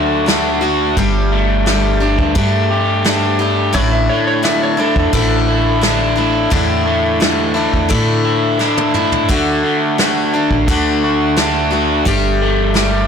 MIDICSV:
0, 0, Header, 1, 6, 480
1, 0, Start_track
1, 0, Tempo, 692841
1, 675, Time_signature, 4, 2, 24, 8
1, 9058, End_track
2, 0, Start_track
2, 0, Title_t, "Electric slide guitar"
2, 0, Program_c, 0, 29
2, 2593, Note_on_c, 0, 73, 88
2, 2712, Note_off_c, 0, 73, 0
2, 2717, Note_on_c, 0, 76, 67
2, 2834, Note_off_c, 0, 76, 0
2, 2837, Note_on_c, 0, 73, 83
2, 2951, Note_off_c, 0, 73, 0
2, 2960, Note_on_c, 0, 73, 85
2, 3075, Note_off_c, 0, 73, 0
2, 3078, Note_on_c, 0, 76, 73
2, 3194, Note_off_c, 0, 76, 0
2, 3210, Note_on_c, 0, 73, 79
2, 3321, Note_off_c, 0, 73, 0
2, 3331, Note_on_c, 0, 69, 86
2, 4737, Note_off_c, 0, 69, 0
2, 9058, End_track
3, 0, Start_track
3, 0, Title_t, "Steel-string acoustic guitar"
3, 0, Program_c, 1, 25
3, 0, Note_on_c, 1, 50, 86
3, 0, Note_on_c, 1, 57, 99
3, 0, Note_on_c, 1, 62, 80
3, 0, Note_on_c, 1, 66, 85
3, 173, Note_off_c, 1, 50, 0
3, 181, Note_on_c, 1, 50, 61
3, 188, Note_off_c, 1, 57, 0
3, 191, Note_on_c, 1, 57, 62
3, 193, Note_off_c, 1, 66, 0
3, 197, Note_off_c, 1, 62, 0
3, 200, Note_on_c, 1, 62, 62
3, 202, Note_on_c, 1, 66, 74
3, 413, Note_off_c, 1, 66, 0
3, 422, Note_on_c, 1, 66, 60
3, 424, Note_off_c, 1, 62, 0
3, 428, Note_off_c, 1, 50, 0
3, 432, Note_on_c, 1, 62, 53
3, 433, Note_off_c, 1, 57, 0
3, 443, Note_on_c, 1, 57, 43
3, 668, Note_off_c, 1, 57, 0
3, 669, Note_off_c, 1, 66, 0
3, 670, Note_off_c, 1, 62, 0
3, 671, Note_on_c, 1, 55, 81
3, 676, Note_on_c, 1, 57, 82
3, 678, Note_on_c, 1, 62, 95
3, 682, Note_on_c, 1, 67, 78
3, 1142, Note_off_c, 1, 55, 0
3, 1150, Note_on_c, 1, 55, 57
3, 1154, Note_off_c, 1, 57, 0
3, 1157, Note_on_c, 1, 57, 62
3, 1159, Note_off_c, 1, 67, 0
3, 1163, Note_off_c, 1, 62, 0
3, 1165, Note_on_c, 1, 62, 64
3, 1167, Note_on_c, 1, 67, 72
3, 1379, Note_off_c, 1, 67, 0
3, 1386, Note_off_c, 1, 62, 0
3, 1388, Note_on_c, 1, 67, 54
3, 1394, Note_off_c, 1, 55, 0
3, 1395, Note_on_c, 1, 62, 51
3, 1397, Note_off_c, 1, 57, 0
3, 1406, Note_on_c, 1, 57, 43
3, 1621, Note_off_c, 1, 57, 0
3, 1626, Note_off_c, 1, 62, 0
3, 1628, Note_on_c, 1, 55, 86
3, 1630, Note_on_c, 1, 57, 86
3, 1632, Note_off_c, 1, 67, 0
3, 1634, Note_on_c, 1, 62, 84
3, 1641, Note_on_c, 1, 67, 95
3, 2101, Note_off_c, 1, 55, 0
3, 2110, Note_on_c, 1, 55, 56
3, 2112, Note_off_c, 1, 57, 0
3, 2115, Note_on_c, 1, 57, 65
3, 2118, Note_off_c, 1, 62, 0
3, 2118, Note_off_c, 1, 67, 0
3, 2121, Note_on_c, 1, 62, 70
3, 2126, Note_on_c, 1, 67, 59
3, 2340, Note_off_c, 1, 67, 0
3, 2348, Note_on_c, 1, 67, 63
3, 2350, Note_off_c, 1, 62, 0
3, 2354, Note_off_c, 1, 55, 0
3, 2356, Note_off_c, 1, 57, 0
3, 2358, Note_on_c, 1, 62, 48
3, 2366, Note_on_c, 1, 57, 45
3, 2580, Note_off_c, 1, 57, 0
3, 2581, Note_on_c, 1, 45, 83
3, 2586, Note_off_c, 1, 62, 0
3, 2588, Note_on_c, 1, 50, 81
3, 2588, Note_on_c, 1, 57, 83
3, 2593, Note_off_c, 1, 67, 0
3, 2594, Note_on_c, 1, 62, 97
3, 2596, Note_on_c, 1, 64, 93
3, 3057, Note_off_c, 1, 50, 0
3, 3066, Note_on_c, 1, 50, 60
3, 3067, Note_off_c, 1, 57, 0
3, 3070, Note_off_c, 1, 45, 0
3, 3070, Note_on_c, 1, 57, 69
3, 3071, Note_off_c, 1, 62, 0
3, 3071, Note_off_c, 1, 64, 0
3, 3074, Note_on_c, 1, 62, 71
3, 3080, Note_on_c, 1, 64, 77
3, 3297, Note_off_c, 1, 64, 0
3, 3305, Note_on_c, 1, 64, 59
3, 3307, Note_off_c, 1, 62, 0
3, 3312, Note_off_c, 1, 50, 0
3, 3314, Note_off_c, 1, 57, 0
3, 3315, Note_on_c, 1, 62, 45
3, 3322, Note_on_c, 1, 57, 44
3, 3547, Note_off_c, 1, 57, 0
3, 3551, Note_off_c, 1, 62, 0
3, 3552, Note_off_c, 1, 64, 0
3, 3553, Note_on_c, 1, 45, 89
3, 3555, Note_on_c, 1, 50, 86
3, 3555, Note_on_c, 1, 57, 94
3, 3560, Note_on_c, 1, 62, 90
3, 3561, Note_on_c, 1, 64, 106
3, 4020, Note_off_c, 1, 50, 0
3, 4028, Note_on_c, 1, 50, 64
3, 4032, Note_off_c, 1, 57, 0
3, 4035, Note_off_c, 1, 45, 0
3, 4035, Note_on_c, 1, 57, 67
3, 4037, Note_off_c, 1, 64, 0
3, 4038, Note_off_c, 1, 62, 0
3, 4041, Note_on_c, 1, 62, 62
3, 4045, Note_on_c, 1, 64, 63
3, 4257, Note_off_c, 1, 64, 0
3, 4265, Note_on_c, 1, 64, 56
3, 4267, Note_off_c, 1, 62, 0
3, 4273, Note_off_c, 1, 50, 0
3, 4275, Note_off_c, 1, 57, 0
3, 4276, Note_on_c, 1, 62, 52
3, 4283, Note_on_c, 1, 57, 49
3, 4505, Note_on_c, 1, 45, 74
3, 4506, Note_off_c, 1, 62, 0
3, 4507, Note_off_c, 1, 57, 0
3, 4512, Note_off_c, 1, 64, 0
3, 4512, Note_on_c, 1, 50, 88
3, 4515, Note_on_c, 1, 57, 83
3, 4515, Note_on_c, 1, 62, 98
3, 4520, Note_on_c, 1, 64, 94
3, 4979, Note_off_c, 1, 50, 0
3, 4988, Note_on_c, 1, 50, 59
3, 4990, Note_off_c, 1, 57, 0
3, 4992, Note_off_c, 1, 45, 0
3, 4993, Note_on_c, 1, 57, 65
3, 4994, Note_off_c, 1, 64, 0
3, 4995, Note_off_c, 1, 62, 0
3, 4997, Note_on_c, 1, 62, 64
3, 5002, Note_on_c, 1, 64, 66
3, 5215, Note_off_c, 1, 64, 0
3, 5223, Note_on_c, 1, 64, 54
3, 5228, Note_off_c, 1, 62, 0
3, 5233, Note_off_c, 1, 50, 0
3, 5234, Note_off_c, 1, 57, 0
3, 5236, Note_on_c, 1, 62, 51
3, 5242, Note_on_c, 1, 57, 46
3, 5464, Note_off_c, 1, 57, 0
3, 5464, Note_on_c, 1, 45, 86
3, 5468, Note_off_c, 1, 64, 0
3, 5469, Note_off_c, 1, 62, 0
3, 5472, Note_on_c, 1, 50, 80
3, 5472, Note_on_c, 1, 57, 97
3, 5476, Note_on_c, 1, 64, 101
3, 5477, Note_on_c, 1, 62, 90
3, 5944, Note_off_c, 1, 50, 0
3, 5951, Note_off_c, 1, 45, 0
3, 5953, Note_on_c, 1, 50, 61
3, 5955, Note_off_c, 1, 57, 0
3, 5957, Note_off_c, 1, 64, 0
3, 5957, Note_on_c, 1, 57, 60
3, 5960, Note_off_c, 1, 62, 0
3, 5963, Note_on_c, 1, 62, 62
3, 5969, Note_on_c, 1, 64, 64
3, 6185, Note_off_c, 1, 64, 0
3, 6193, Note_on_c, 1, 64, 55
3, 6195, Note_off_c, 1, 50, 0
3, 6197, Note_off_c, 1, 57, 0
3, 6200, Note_off_c, 1, 62, 0
3, 6208, Note_on_c, 1, 62, 55
3, 6212, Note_on_c, 1, 57, 47
3, 6431, Note_off_c, 1, 57, 0
3, 6433, Note_on_c, 1, 50, 82
3, 6435, Note_off_c, 1, 62, 0
3, 6435, Note_off_c, 1, 64, 0
3, 6439, Note_on_c, 1, 57, 92
3, 6443, Note_on_c, 1, 62, 93
3, 6446, Note_on_c, 1, 66, 90
3, 6908, Note_off_c, 1, 50, 0
3, 6916, Note_on_c, 1, 50, 65
3, 6921, Note_off_c, 1, 57, 0
3, 6921, Note_off_c, 1, 66, 0
3, 6924, Note_off_c, 1, 62, 0
3, 6924, Note_on_c, 1, 57, 59
3, 6926, Note_on_c, 1, 62, 66
3, 6932, Note_on_c, 1, 66, 73
3, 7152, Note_off_c, 1, 66, 0
3, 7156, Note_off_c, 1, 50, 0
3, 7160, Note_off_c, 1, 57, 0
3, 7160, Note_off_c, 1, 62, 0
3, 7161, Note_on_c, 1, 66, 54
3, 7168, Note_on_c, 1, 62, 47
3, 7176, Note_on_c, 1, 57, 46
3, 7395, Note_off_c, 1, 57, 0
3, 7398, Note_off_c, 1, 66, 0
3, 7400, Note_on_c, 1, 50, 87
3, 7402, Note_off_c, 1, 62, 0
3, 7403, Note_on_c, 1, 57, 94
3, 7409, Note_on_c, 1, 62, 98
3, 7411, Note_on_c, 1, 66, 101
3, 7865, Note_off_c, 1, 50, 0
3, 7874, Note_on_c, 1, 50, 68
3, 7875, Note_off_c, 1, 57, 0
3, 7878, Note_on_c, 1, 57, 66
3, 7879, Note_off_c, 1, 62, 0
3, 7881, Note_off_c, 1, 66, 0
3, 7882, Note_on_c, 1, 62, 62
3, 7889, Note_on_c, 1, 66, 70
3, 8101, Note_off_c, 1, 66, 0
3, 8110, Note_on_c, 1, 66, 53
3, 8113, Note_off_c, 1, 62, 0
3, 8115, Note_off_c, 1, 50, 0
3, 8117, Note_off_c, 1, 57, 0
3, 8121, Note_on_c, 1, 62, 47
3, 8127, Note_on_c, 1, 57, 47
3, 8349, Note_off_c, 1, 57, 0
3, 8350, Note_on_c, 1, 55, 77
3, 8352, Note_off_c, 1, 62, 0
3, 8352, Note_off_c, 1, 66, 0
3, 8357, Note_on_c, 1, 57, 84
3, 8360, Note_on_c, 1, 62, 101
3, 8363, Note_on_c, 1, 67, 95
3, 8818, Note_off_c, 1, 55, 0
3, 8827, Note_on_c, 1, 55, 58
3, 8831, Note_off_c, 1, 57, 0
3, 8834, Note_on_c, 1, 57, 64
3, 8837, Note_off_c, 1, 62, 0
3, 8839, Note_off_c, 1, 67, 0
3, 8840, Note_on_c, 1, 62, 60
3, 8847, Note_on_c, 1, 67, 65
3, 9058, Note_off_c, 1, 55, 0
3, 9058, Note_off_c, 1, 57, 0
3, 9058, Note_off_c, 1, 62, 0
3, 9058, Note_off_c, 1, 67, 0
3, 9058, End_track
4, 0, Start_track
4, 0, Title_t, "Overdriven electric guitar"
4, 0, Program_c, 2, 29
4, 0, Note_on_c, 2, 54, 61
4, 0, Note_on_c, 2, 62, 61
4, 0, Note_on_c, 2, 66, 63
4, 187, Note_off_c, 2, 62, 0
4, 419, Note_off_c, 2, 66, 0
4, 432, Note_off_c, 2, 54, 0
4, 915, Note_on_c, 2, 57, 64
4, 1637, Note_off_c, 2, 57, 0
4, 1876, Note_on_c, 2, 67, 68
4, 2355, Note_off_c, 2, 67, 0
4, 2838, Note_on_c, 2, 57, 72
4, 3562, Note_off_c, 2, 57, 0
4, 3797, Note_on_c, 2, 64, 65
4, 4272, Note_off_c, 2, 64, 0
4, 4759, Note_on_c, 2, 57, 66
4, 5473, Note_off_c, 2, 57, 0
4, 5716, Note_on_c, 2, 64, 68
4, 6187, Note_off_c, 2, 64, 0
4, 6678, Note_on_c, 2, 57, 70
4, 7396, Note_off_c, 2, 57, 0
4, 7646, Note_on_c, 2, 66, 63
4, 8111, Note_off_c, 2, 66, 0
4, 8603, Note_on_c, 2, 57, 65
4, 9058, Note_off_c, 2, 57, 0
4, 9058, End_track
5, 0, Start_track
5, 0, Title_t, "Upright bass"
5, 0, Program_c, 3, 32
5, 0, Note_on_c, 3, 38, 81
5, 647, Note_off_c, 3, 38, 0
5, 672, Note_on_c, 3, 31, 91
5, 1487, Note_off_c, 3, 31, 0
5, 1514, Note_on_c, 3, 38, 80
5, 1628, Note_off_c, 3, 38, 0
5, 1635, Note_on_c, 3, 43, 89
5, 2597, Note_on_c, 3, 33, 96
5, 2608, Note_off_c, 3, 43, 0
5, 2823, Note_off_c, 3, 33, 0
5, 3437, Note_on_c, 3, 40, 80
5, 3550, Note_off_c, 3, 40, 0
5, 3556, Note_on_c, 3, 33, 91
5, 4490, Note_off_c, 3, 33, 0
5, 4518, Note_on_c, 3, 40, 96
5, 5330, Note_off_c, 3, 40, 0
5, 5357, Note_on_c, 3, 40, 81
5, 5470, Note_off_c, 3, 40, 0
5, 5480, Note_on_c, 3, 45, 94
5, 6440, Note_off_c, 3, 45, 0
5, 6440, Note_on_c, 3, 38, 91
5, 6664, Note_off_c, 3, 38, 0
5, 7280, Note_on_c, 3, 33, 81
5, 7391, Note_off_c, 3, 33, 0
5, 7397, Note_on_c, 3, 38, 85
5, 8328, Note_off_c, 3, 38, 0
5, 8357, Note_on_c, 3, 31, 90
5, 9058, Note_off_c, 3, 31, 0
5, 9058, End_track
6, 0, Start_track
6, 0, Title_t, "Drums"
6, 195, Note_on_c, 9, 46, 53
6, 197, Note_on_c, 9, 38, 112
6, 264, Note_off_c, 9, 46, 0
6, 266, Note_off_c, 9, 38, 0
6, 673, Note_on_c, 9, 36, 102
6, 673, Note_on_c, 9, 46, 46
6, 742, Note_off_c, 9, 36, 0
6, 742, Note_off_c, 9, 46, 0
6, 1154, Note_on_c, 9, 46, 49
6, 1156, Note_on_c, 9, 38, 100
6, 1223, Note_off_c, 9, 46, 0
6, 1225, Note_off_c, 9, 38, 0
6, 1514, Note_on_c, 9, 36, 81
6, 1584, Note_off_c, 9, 36, 0
6, 1635, Note_on_c, 9, 36, 108
6, 1636, Note_on_c, 9, 46, 47
6, 1704, Note_off_c, 9, 36, 0
6, 1706, Note_off_c, 9, 46, 0
6, 2115, Note_on_c, 9, 46, 48
6, 2117, Note_on_c, 9, 38, 110
6, 2184, Note_off_c, 9, 46, 0
6, 2186, Note_off_c, 9, 38, 0
6, 2596, Note_on_c, 9, 36, 111
6, 2598, Note_on_c, 9, 46, 47
6, 2666, Note_off_c, 9, 36, 0
6, 2667, Note_off_c, 9, 46, 0
6, 3079, Note_on_c, 9, 46, 51
6, 3081, Note_on_c, 9, 38, 103
6, 3148, Note_off_c, 9, 46, 0
6, 3150, Note_off_c, 9, 38, 0
6, 3436, Note_on_c, 9, 36, 78
6, 3506, Note_off_c, 9, 36, 0
6, 3557, Note_on_c, 9, 36, 101
6, 3561, Note_on_c, 9, 46, 54
6, 3626, Note_off_c, 9, 36, 0
6, 3630, Note_off_c, 9, 46, 0
6, 4038, Note_on_c, 9, 46, 51
6, 4040, Note_on_c, 9, 38, 113
6, 4107, Note_off_c, 9, 46, 0
6, 4109, Note_off_c, 9, 38, 0
6, 4513, Note_on_c, 9, 46, 54
6, 4516, Note_on_c, 9, 36, 115
6, 4582, Note_off_c, 9, 46, 0
6, 4585, Note_off_c, 9, 36, 0
6, 5001, Note_on_c, 9, 38, 113
6, 5071, Note_off_c, 9, 38, 0
6, 5359, Note_on_c, 9, 36, 68
6, 5428, Note_off_c, 9, 36, 0
6, 5479, Note_on_c, 9, 36, 96
6, 5481, Note_on_c, 9, 46, 51
6, 5548, Note_off_c, 9, 36, 0
6, 5550, Note_off_c, 9, 46, 0
6, 5961, Note_on_c, 9, 38, 56
6, 6030, Note_off_c, 9, 38, 0
6, 6079, Note_on_c, 9, 48, 61
6, 6149, Note_off_c, 9, 48, 0
6, 6196, Note_on_c, 9, 45, 75
6, 6265, Note_off_c, 9, 45, 0
6, 6320, Note_on_c, 9, 43, 73
6, 6389, Note_off_c, 9, 43, 0
6, 6440, Note_on_c, 9, 36, 97
6, 6440, Note_on_c, 9, 46, 48
6, 6509, Note_off_c, 9, 36, 0
6, 6509, Note_off_c, 9, 46, 0
6, 6920, Note_on_c, 9, 46, 44
6, 6922, Note_on_c, 9, 38, 111
6, 6989, Note_off_c, 9, 46, 0
6, 6992, Note_off_c, 9, 38, 0
6, 7279, Note_on_c, 9, 36, 67
6, 7348, Note_off_c, 9, 36, 0
6, 7399, Note_on_c, 9, 36, 102
6, 7400, Note_on_c, 9, 46, 51
6, 7468, Note_off_c, 9, 36, 0
6, 7469, Note_off_c, 9, 46, 0
6, 7877, Note_on_c, 9, 46, 50
6, 7879, Note_on_c, 9, 38, 104
6, 7947, Note_off_c, 9, 46, 0
6, 7949, Note_off_c, 9, 38, 0
6, 8357, Note_on_c, 9, 36, 109
6, 8359, Note_on_c, 9, 46, 51
6, 8426, Note_off_c, 9, 36, 0
6, 8428, Note_off_c, 9, 46, 0
6, 8833, Note_on_c, 9, 46, 52
6, 8835, Note_on_c, 9, 38, 98
6, 8902, Note_off_c, 9, 46, 0
6, 8905, Note_off_c, 9, 38, 0
6, 9058, End_track
0, 0, End_of_file